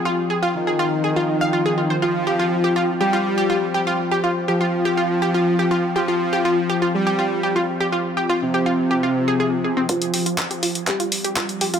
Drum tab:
HH |----------------|----------------|----------------|----------------|
CP |----------------|----------------|----------------|----------------|
BD |----------------|----------------|----------------|----------------|

HH |----------------|xxoxxxoxxxoxxxox|
CP |----------------|----x---x---x---|
BD |----------------|o---o---o---o---|